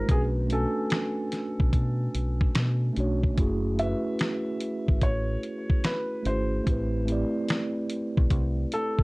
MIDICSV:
0, 0, Header, 1, 5, 480
1, 0, Start_track
1, 0, Key_signature, 3, "minor"
1, 0, Tempo, 821918
1, 52, Time_signature, 4, 2, 24, 8
1, 5274, End_track
2, 0, Start_track
2, 0, Title_t, "Felt piano"
2, 0, Program_c, 0, 0
2, 0, Note_on_c, 0, 70, 85
2, 66, Note_off_c, 0, 70, 0
2, 66, Note_on_c, 0, 68, 90
2, 118, Note_off_c, 0, 68, 0
2, 307, Note_on_c, 0, 69, 81
2, 1716, Note_off_c, 0, 69, 0
2, 2216, Note_on_c, 0, 76, 101
2, 2911, Note_off_c, 0, 76, 0
2, 2939, Note_on_c, 0, 73, 90
2, 3418, Note_on_c, 0, 71, 80
2, 3430, Note_off_c, 0, 73, 0
2, 3659, Note_on_c, 0, 72, 74
2, 3662, Note_off_c, 0, 71, 0
2, 4352, Note_off_c, 0, 72, 0
2, 5102, Note_on_c, 0, 69, 106
2, 5274, Note_off_c, 0, 69, 0
2, 5274, End_track
3, 0, Start_track
3, 0, Title_t, "Tine electric piano"
3, 0, Program_c, 1, 4
3, 0, Control_c, 1, 64, 127
3, 0, Note_on_c, 1, 56, 61
3, 0, Note_on_c, 1, 63, 60
3, 0, Note_on_c, 1, 65, 55
3, 0, Note_on_c, 1, 67, 56
3, 0, Note_on_c, 1, 72, 64
3, 33, Note_on_c, 1, 57, 67
3, 43, Note_on_c, 1, 61, 61
3, 54, Note_on_c, 1, 62, 59
3, 59, Control_c, 1, 64, 0
3, 60, Note_off_c, 1, 63, 0
3, 60, Note_off_c, 1, 65, 0
3, 61, Note_off_c, 1, 56, 0
3, 64, Note_off_c, 1, 72, 0
3, 64, Note_on_c, 1, 66, 63
3, 65, Note_off_c, 1, 67, 0
3, 75, Note_on_c, 1, 71, 75
3, 178, Control_c, 1, 64, 127
3, 225, Note_off_c, 1, 57, 0
3, 230, Note_off_c, 1, 61, 0
3, 235, Note_off_c, 1, 62, 0
3, 241, Note_off_c, 1, 66, 0
3, 246, Note_off_c, 1, 71, 0
3, 272, Note_on_c, 1, 57, 69
3, 282, Note_on_c, 1, 61, 67
3, 293, Note_on_c, 1, 62, 65
3, 302, Note_on_c, 1, 66, 66
3, 314, Note_on_c, 1, 80, 78
3, 939, Note_off_c, 1, 57, 0
3, 944, Note_off_c, 1, 61, 0
3, 950, Note_off_c, 1, 62, 0
3, 954, Note_off_c, 1, 66, 0
3, 960, Note_off_c, 1, 80, 0
3, 1712, Note_on_c, 1, 57, 70
3, 1723, Note_on_c, 1, 61, 65
3, 1733, Note_on_c, 1, 62, 66
3, 1743, Note_on_c, 1, 66, 67
3, 1753, Note_on_c, 1, 73, 75
3, 1905, Note_off_c, 1, 57, 0
3, 1910, Note_off_c, 1, 61, 0
3, 1915, Note_off_c, 1, 62, 0
3, 1920, Note_off_c, 1, 66, 0
3, 1925, Note_off_c, 1, 73, 0
3, 1953, Note_on_c, 1, 57, 85
3, 1964, Note_on_c, 1, 61, 70
3, 1974, Note_on_c, 1, 64, 72
3, 1979, Control_c, 1, 64, 0
3, 1985, Note_on_c, 1, 66, 75
3, 1996, Note_on_c, 1, 68, 87
3, 2070, Control_c, 1, 64, 127
3, 2145, Note_off_c, 1, 57, 0
3, 2150, Note_off_c, 1, 61, 0
3, 2155, Note_off_c, 1, 64, 0
3, 2161, Note_off_c, 1, 66, 0
3, 2166, Note_off_c, 1, 68, 0
3, 2195, Note_on_c, 1, 57, 68
3, 2204, Note_on_c, 1, 61, 62
3, 2215, Note_on_c, 1, 64, 68
3, 2227, Note_on_c, 1, 66, 68
3, 2236, Note_on_c, 1, 71, 82
3, 2860, Note_off_c, 1, 57, 0
3, 2865, Note_off_c, 1, 61, 0
3, 2871, Note_off_c, 1, 64, 0
3, 2876, Note_off_c, 1, 66, 0
3, 2881, Note_off_c, 1, 71, 0
3, 3635, Note_on_c, 1, 57, 63
3, 3647, Note_on_c, 1, 61, 61
3, 3657, Note_on_c, 1, 64, 59
3, 3668, Note_on_c, 1, 66, 55
3, 3677, Note_on_c, 1, 68, 66
3, 3826, Note_off_c, 1, 57, 0
3, 3832, Note_off_c, 1, 61, 0
3, 3837, Note_off_c, 1, 64, 0
3, 3842, Note_off_c, 1, 66, 0
3, 3847, Note_off_c, 1, 68, 0
3, 3875, Note_on_c, 1, 57, 72
3, 3886, Note_on_c, 1, 60, 64
3, 3896, Note_on_c, 1, 64, 65
3, 3900, Control_c, 1, 64, 0
3, 3906, Note_on_c, 1, 67, 64
3, 3916, Note_on_c, 1, 71, 78
3, 4008, Control_c, 1, 64, 127
3, 4066, Note_off_c, 1, 57, 0
3, 4071, Note_off_c, 1, 60, 0
3, 4077, Note_off_c, 1, 64, 0
3, 4081, Note_off_c, 1, 67, 0
3, 4087, Note_off_c, 1, 71, 0
3, 4117, Note_on_c, 1, 57, 71
3, 4128, Note_on_c, 1, 60, 66
3, 4138, Note_on_c, 1, 64, 67
3, 4148, Note_on_c, 1, 67, 65
3, 4158, Note_on_c, 1, 74, 77
3, 4782, Note_off_c, 1, 57, 0
3, 4787, Note_off_c, 1, 60, 0
3, 4792, Note_off_c, 1, 64, 0
3, 4797, Note_off_c, 1, 67, 0
3, 4802, Note_off_c, 1, 74, 0
3, 5274, End_track
4, 0, Start_track
4, 0, Title_t, "Fingered electric bass"
4, 0, Program_c, 2, 33
4, 53, Note_on_c, 2, 35, 100
4, 379, Note_off_c, 2, 35, 0
4, 933, Note_on_c, 2, 35, 88
4, 1000, Note_off_c, 2, 35, 0
4, 1011, Note_on_c, 2, 47, 88
4, 1209, Note_off_c, 2, 47, 0
4, 1253, Note_on_c, 2, 35, 76
4, 1450, Note_off_c, 2, 35, 0
4, 1495, Note_on_c, 2, 47, 88
4, 1691, Note_off_c, 2, 47, 0
4, 1734, Note_on_c, 2, 35, 81
4, 1931, Note_off_c, 2, 35, 0
4, 1972, Note_on_c, 2, 30, 85
4, 2299, Note_off_c, 2, 30, 0
4, 2853, Note_on_c, 2, 32, 81
4, 2920, Note_off_c, 2, 32, 0
4, 2931, Note_on_c, 2, 33, 83
4, 3129, Note_off_c, 2, 33, 0
4, 3651, Note_on_c, 2, 32, 78
4, 3849, Note_off_c, 2, 32, 0
4, 3893, Note_on_c, 2, 33, 94
4, 4219, Note_off_c, 2, 33, 0
4, 4774, Note_on_c, 2, 35, 98
4, 4840, Note_off_c, 2, 35, 0
4, 4851, Note_on_c, 2, 36, 90
4, 5049, Note_off_c, 2, 36, 0
4, 5274, End_track
5, 0, Start_track
5, 0, Title_t, "Drums"
5, 52, Note_on_c, 9, 36, 97
5, 52, Note_on_c, 9, 42, 79
5, 110, Note_off_c, 9, 36, 0
5, 110, Note_off_c, 9, 42, 0
5, 292, Note_on_c, 9, 42, 61
5, 351, Note_off_c, 9, 42, 0
5, 528, Note_on_c, 9, 42, 62
5, 537, Note_on_c, 9, 38, 112
5, 586, Note_off_c, 9, 42, 0
5, 596, Note_off_c, 9, 38, 0
5, 770, Note_on_c, 9, 42, 68
5, 775, Note_on_c, 9, 38, 34
5, 829, Note_off_c, 9, 42, 0
5, 833, Note_off_c, 9, 38, 0
5, 933, Note_on_c, 9, 36, 90
5, 991, Note_off_c, 9, 36, 0
5, 1010, Note_on_c, 9, 36, 75
5, 1010, Note_on_c, 9, 42, 62
5, 1068, Note_off_c, 9, 36, 0
5, 1069, Note_off_c, 9, 42, 0
5, 1253, Note_on_c, 9, 42, 71
5, 1312, Note_off_c, 9, 42, 0
5, 1407, Note_on_c, 9, 36, 89
5, 1465, Note_off_c, 9, 36, 0
5, 1488, Note_on_c, 9, 42, 81
5, 1491, Note_on_c, 9, 38, 107
5, 1546, Note_off_c, 9, 42, 0
5, 1550, Note_off_c, 9, 38, 0
5, 1731, Note_on_c, 9, 42, 49
5, 1789, Note_off_c, 9, 42, 0
5, 1889, Note_on_c, 9, 36, 91
5, 1947, Note_off_c, 9, 36, 0
5, 1971, Note_on_c, 9, 42, 78
5, 1972, Note_on_c, 9, 36, 95
5, 2030, Note_off_c, 9, 36, 0
5, 2030, Note_off_c, 9, 42, 0
5, 2213, Note_on_c, 9, 42, 58
5, 2271, Note_off_c, 9, 42, 0
5, 2448, Note_on_c, 9, 42, 69
5, 2458, Note_on_c, 9, 38, 104
5, 2507, Note_off_c, 9, 42, 0
5, 2516, Note_off_c, 9, 38, 0
5, 2690, Note_on_c, 9, 42, 68
5, 2749, Note_off_c, 9, 42, 0
5, 2853, Note_on_c, 9, 36, 104
5, 2911, Note_off_c, 9, 36, 0
5, 2929, Note_on_c, 9, 42, 67
5, 2930, Note_on_c, 9, 36, 78
5, 2988, Note_off_c, 9, 36, 0
5, 2988, Note_off_c, 9, 42, 0
5, 3173, Note_on_c, 9, 42, 66
5, 3232, Note_off_c, 9, 42, 0
5, 3328, Note_on_c, 9, 36, 89
5, 3386, Note_off_c, 9, 36, 0
5, 3411, Note_on_c, 9, 42, 85
5, 3414, Note_on_c, 9, 38, 104
5, 3469, Note_off_c, 9, 42, 0
5, 3473, Note_off_c, 9, 38, 0
5, 3652, Note_on_c, 9, 42, 50
5, 3711, Note_off_c, 9, 42, 0
5, 3893, Note_on_c, 9, 36, 94
5, 3894, Note_on_c, 9, 42, 75
5, 3951, Note_off_c, 9, 36, 0
5, 3952, Note_off_c, 9, 42, 0
5, 4134, Note_on_c, 9, 42, 56
5, 4193, Note_off_c, 9, 42, 0
5, 4370, Note_on_c, 9, 42, 67
5, 4380, Note_on_c, 9, 38, 104
5, 4429, Note_off_c, 9, 42, 0
5, 4439, Note_off_c, 9, 38, 0
5, 4611, Note_on_c, 9, 42, 69
5, 4669, Note_off_c, 9, 42, 0
5, 4773, Note_on_c, 9, 36, 98
5, 4832, Note_off_c, 9, 36, 0
5, 4849, Note_on_c, 9, 42, 68
5, 4850, Note_on_c, 9, 36, 78
5, 4908, Note_off_c, 9, 42, 0
5, 4909, Note_off_c, 9, 36, 0
5, 5092, Note_on_c, 9, 42, 68
5, 5150, Note_off_c, 9, 42, 0
5, 5248, Note_on_c, 9, 36, 85
5, 5274, Note_off_c, 9, 36, 0
5, 5274, End_track
0, 0, End_of_file